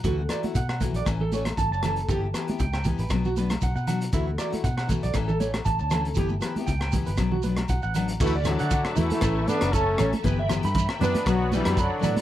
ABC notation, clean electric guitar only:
X:1
M:4/4
L:1/16
Q:"Swing 16ths" 1/4=118
K:D
V:1 name="Clean electric guitar"
F z d z f f z d z A c z a a a z | G z B z g g z B z F B z f f f z | E z d z f f z d z A c z a a a z | G z B z g g z B z F B z f f f z |
F d z f f z2 A A z A z a z c z | B e z b b z B B B z B b b z d z |]